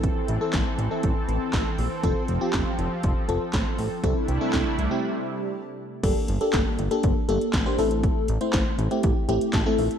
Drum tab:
CC |----------------|----------------|----------------|x---------------|
HH |x-x-x-x-x-x-x-o-|x-x-x-x-x-x-x-o-|x-x-x-x---------|x-xxx-xxx-xxx-ox|
CP |----x-------x---|----x-------x---|----x-----------|----x-------x---|
SD |----o-------o---|----o-------o---|----o-----------|----o-------o---|
BD |o---o---o---o---|o---o---o---o---|o---o-----------|o---o---o---o---|

CC |----------------|
HH |x-xxx-xxx-xxx-ox|
CP |----x-------x---|
SD |----o-------o---|
BD |o---o---o---o---|